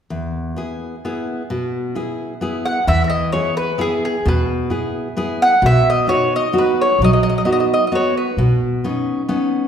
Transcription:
0.10 nylon-string guitar E2
0.56 nylon-string guitar B3 E4 G#4
1.05 nylon-string guitar B3 E4 G#4
1.50 nylon-string guitar B2
1.95 nylon-string guitar B3 E4 G#4
2.41 nylon-string guitar B3 E4 G#4
2.65 mandolin F#5
2.87 upright bass E2, nylon-string guitar E3, mandolin E5
3.04 mandolin E5
3.10 mandolin D#5
3.32 nylon-string guitar B3 E4 G#4, mandolin C#5
3.57 mandolin B4
3.78 nylon-string guitar B3 E4 G#4, mandolin G#4
4.05 mandolin G#4
4.26 upright bass E2, nylon-string guitar B2, mandolin B4
4.70 nylon-string guitar B3 E4 G#4
5.17 nylon-string guitar B3 E4 G#4
5.42 mandolin F#5
5.62 upright bass B1, nylon-string guitar B2
5.66 mandolin E5
5.90 mandolin D#5
6.07 nylon-string guitar B3 D#4 F#4, mandolin C#5
6.36 mandolin D#5
6.53 nylon-string guitar B3 D#4 F#4
6.58 mandolin B4
6.81 mandolin C#5
6.99 upright bass B1, nylon-string guitar F#3
7.04 mandolin D#5
7.13 mandolin D#5
7.23 mandolin D#5
7.29 mandolin D#5
7.38 mandolin D#5
7.45 nylon-string guitar B3 D#4 F#4, mandolin D#5
7.52 mandolin D#5
7.60 mandolin D#5
7.74 mandolin D#5
7.87 mandolin D#5
7.92 nylon-string guitar B3 D#4 F#4, mandolin C#5
8.17 mandolin B4
8.37 upright bass B1, nylon-string guitar B2
8.84 nylon-string guitar B3 C#4 D#4
9.29 nylon-string guitar B3 C#4 D#4

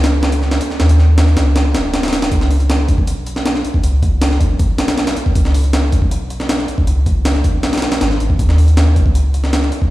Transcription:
Already playing: sub bass C#2
0.04 snare, closed hi-hat
0.23 snare
0.32 closed hi-hat
0.42 snare
0.51 snare
0.61 closed hi-hat
0.70 snare
0.80 sub bass D#2, snare
0.89 closed hi-hat
0.99 snare
1.18 snare, closed hi-hat
1.27 snare
1.37 sub bass C#2, snare, closed hi-hat
1.56 snare, closed hi-hat
1.75 sub bass D#1, snare, closed hi-hat
1.94 snare, closed hi-hat
2.03 snare, closed hi-hat
2.08 snare, closed hi-hat
2.13 snare, closed hi-hat
2.22 snare, closed hi-hat
2.31 sub bass C#2, kick, closed hi-hat
2.41 snare
2.51 open hi-hat
2.60 closed hi-hat
2.70 snare, closed hi-hat
2.88 sub bass B1, kick, closed hi-hat
2.98 kick
3.07 closed hi-hat
3.27 closed hi-hat
3.36 snare
3.46 snare, closed hi-hat
3.55 snare
3.65 closed hi-hat
3.74 kick
3.84 sub bass C#2, closed hi-hat
4.03 kick, closed hi-hat
4.22 snare, closed hi-hat
4.31 snare
4.41 sub bass B1, kick, closed hi-hat
4.59 kick, closed hi-hat
4.78 snare, closed hi-hat
4.88 snare, closed hi-hat
4.98 snare, closed hi-hat
5.07 snare, closed hi-hat
5.17 closed hi-hat
5.26 kick
5.35 sub bass C#2, kick, closed hi-hat
5.45 snare
5.54 open hi-hat
5.64 closed hi-hat
5.73 snare, closed hi-hat
5.92 sub bass B1, kick, closed hi-hat
6.02 kick
6.11 closed hi-hat
6.30 closed hi-hat
6.40 snare
6.49 snare, closed hi-hat
6.59 snare
6.68 closed hi-hat
6.78 kick
6.87 sub bass C#2, closed hi-hat
7.06 kick, closed hi-hat
7.25 snare, closed hi-hat
7.35 snare
7.44 sub bass B1, kick, closed hi-hat
7.63 snare, closed hi-hat
7.73 snare, closed hi-hat
7.78 snare, closed hi-hat
7.82 snare, closed hi-hat
7.92 snare, closed hi-hat
8.01 sub bass G#1, snare, closed hi-hat
8.11 snare
8.20 sub bass G#1, closed hi-hat
8.30 kick
8.39 sub bass D#2, kick, closed hi-hat
8.49 snare
8.58 open hi-hat
8.68 closed hi-hat
8.77 snare, closed hi-hat
8.96 sub bass C#2, kick, closed hi-hat
9.06 kick
9.15 closed hi-hat
9.34 closed hi-hat
9.44 snare
9.53 snare, closed hi-hat
9.63 snare
9.72 closed hi-hat
9.82 kick

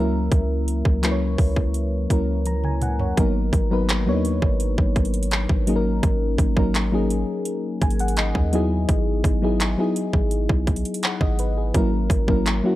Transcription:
Already playing: 808-style bass C#2, fm electric piano F#3 A#3 C#4 E4 A#4 E5
0.32 808-style bass C#2, kick, closed hi-hat
0.68 closed hi-hat
0.85 808-style bass C#2, kick
1.03 fm electric piano F#3 A#3 C#4 E4 B4, clap, closed hi-hat
1.11 fm electric piano C#5
1.38 808-style bass C#2, kick, open hi-hat
1.56 kick
1.74 closed hi-hat
2.10 808-style bass C#2, fm electric piano F#3 A#3 C#4 E4 A#4, kick, closed hi-hat
2.46 fm electric piano A#5, closed hi-hat, high tom
2.64 fm electric piano G#5, mid tom
2.82 fm electric piano F#5, closed hi-hat, mid tom
2.99 fm electric piano C#5, floor tom
3.17 808-style bass G#1, fm electric piano F#3 A#3 B3 D#4 A#4, kick, closed hi-hat
3.53 808-style bass G#1, kick, closed hi-hat
3.71 fm electric piano F#3 B3 D#4 A#4 B4
3.89 clap, closed hi-hat
4.06 808-style bass D#2, fm electric piano F#3 A#3 B3 D4 C#5
4.15 fm electric piano D#4
4.25 closed hi-hat
4.42 808-style bass G#1, kick
4.60 closed hi-hat
4.78 808-style bass G#1, kick
4.96 kick, closed hi-hat
5.05 closed hi-hat
5.14 closed hi-hat
5.23 closed hi-hat
5.31 clap, closed hi-hat
5.49 808-style bass G#1, kick
5.67 fm electric piano F#3 A#3 C#4 D#4 G#4, closed hi-hat
5.76 fm electric piano A#4
6.03 808-style bass G#1, kick, closed hi-hat
6.38 808-style bass G#1, kick, closed hi-hat
6.56 fm electric piano F#3 A#3 C#4 D#4 A#4, kick
6.75 clap, closed hi-hat
6.92 fm electric piano F#3 A#3 C#4 D#4 G#4
7.10 closed hi-hat
7.45 closed hi-hat
7.82 808-style bass G#1, fm electric piano G#5, kick, closed hi-hat
7.90 closed hi-hat
7.99 fm electric piano F#5, closed hi-hat
8.08 closed hi-hat
8.17 fm electric piano D#5, clap, closed hi-hat
8.35 808-style bass D#2, kick
8.53 fm electric piano F#3 B3 D#4 E4 G#4, closed hi-hat
8.89 808-style bass G#1, kick, closed hi-hat
9.24 808-style bass G#1, kick, closed hi-hat
9.42 fm electric piano F#3 B3 D#4 E4 G#4
9.60 clap, closed hi-hat
9.78 fm electric piano F#3 B3 D#4 E4 G#4
9.96 closed hi-hat
10.13 808-style bass G#1, kick
10.31 closed hi-hat
10.49 808-style bass B1, kick
10.67 kick, closed hi-hat
10.76 closed hi-hat
10.85 closed hi-hat
10.94 closed hi-hat
11.03 fm electric piano F#5, clap, closed hi-hat
11.21 808-style bass G#1, fm electric piano D#5, kick
11.39 fm electric piano B4, closed hi-hat
11.58 fm electric piano G#4
11.74 808-style bass G#1, fm electric piano F#3 A#3 C#4 E4 A#4, kick, closed hi-hat
12.10 808-style bass G#1, kick, closed hi-hat
12.27 fm electric piano F#3 A#3 C#4 E4 A#4, kick
12.46 clap, closed hi-hat
12.63 fm electric piano F#3 A#3 C#4 E4 F#4

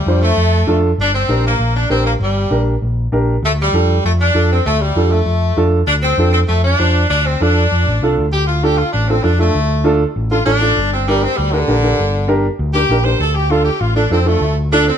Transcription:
Already playing: saxophone section G3
0.06 picked electric bass F2, upright piano D4 F4 C5
0.22 saxophone section A3
0.37 picked electric bass F2
0.67 picked electric bass F2, upright piano D4 F4 A4
0.98 picked electric bass G1, saxophone section D4
1.14 saxophone section C4
1.28 picked electric bass A#1, upright piano D4 G4 A#4
1.47 saxophone section A#3
1.59 picked electric bass A#1
1.76 saxophone section D4
1.90 picked electric bass A#1, saxophone section C4, upright piano D4 G4 A#4
2.06 saxophone section A#3
2.20 picked electric bass G1, saxophone section G3
2.50 picked electric bass A#1, upright piano D4 G4 A#4
2.82 picked electric bass A#1
3.12 picked electric bass A#1, upright piano D4 G4 A#4
3.43 picked electric bass D2, saxophone section A3
3.62 saxophone section G3
3.73 picked electric bass F2, upright piano D4 F4 A4
4.05 picked electric bass F2, saxophone section A3
4.21 saxophone section D4
4.34 picked electric bass F2, upright piano D4 F4 A4
4.52 saxophone section C4
4.66 picked electric bass D2, saxophone section A3
4.81 saxophone section G3
4.96 picked electric bass F2, upright piano D4 F4 A4
5.12 saxophone section A3
5.26 picked electric bass F2
5.57 picked electric bass F2, upright piano D4 F4 A4
5.87 picked electric bass D2, saxophone section D4
6.03 saxophone section C4
6.18 picked electric bass F2, upright piano D4 F4 A4
6.33 saxophone section C4
6.48 picked electric bass F2, saxophone section A3
6.64 saxophone section D4
6.79 picked electric bass F2, upright piano D4 F4 C5
7.10 picked electric bass D2, saxophone section D4
7.26 saxophone section C4
7.40 picked electric bass F2, upright piano D4 F4 A4, saxophone section D4
7.72 picked electric bass F2
7.87 picked electric bass A1
8.02 picked electric bass C2, upright piano D4 F4 A4
8.18 picked electric bass D2
8.32 picked electric bass D2, saxophone section G4
8.47 saxophone section F4
8.63 upright piano D4 F4 A4, saxophone section G4
8.77 saxophone section F4
8.92 picked electric bass A1, saxophone section D4
9.09 saxophone section C4, upright piano D4 F4 A4
9.23 picked electric bass F2, saxophone section D4, upright piano D4 F4 A4
9.39 saxophone section A3, upright piano D4 F4 A4
9.55 picked electric bass D2
9.84 upright piano D4 F4 A4
10.16 picked electric bass A1
10.31 upright piano D4 F4 A4, saxophone section F4
10.45 picked electric bass A1, saxophone section D4, upright piano D4 F4 A4
10.61 upright piano D4 F4 A4
10.77 picked electric bass G1
10.92 saxophone section C4
11.08 saxophone section G3, upright piano D4 G4 A#4
11.23 saxophone section C4
11.37 picked electric bass D2, saxophone section G3
11.53 saxophone section D3, upright piano D4 G4 A#4
11.68 picked electric bass A#1, upright piano D4 G4 A#4
11.83 upright piano D4 G4 A#4
11.99 picked electric bass G1
12.28 upright piano D4 G4 A#4
12.59 picked electric bass D2
12.73 upright piano D4 G4 A#4, saxophone section G4
12.89 picked electric bass A#1, upright piano D4 G4 A#4
13.05 upright piano D4 G4 A#4, saxophone section C5
13.20 picked electric bass D2, saxophone section A4
13.34 saxophone section G4
13.50 upright piano D4 F4 A4, saxophone section F4
13.65 saxophone section G4
13.80 picked electric bass A1, saxophone section F4
13.96 saxophone section D4, upright piano D4 F4 A4
14.10 picked electric bass F2, saxophone section C4, upright piano D4 F4 A4
14.25 saxophone section A3, upright piano D4 F4 A4
14.41 picked electric bass D2
14.72 upright piano D4 F4 A4, saxophone section D4
14.87 saxophone section C4

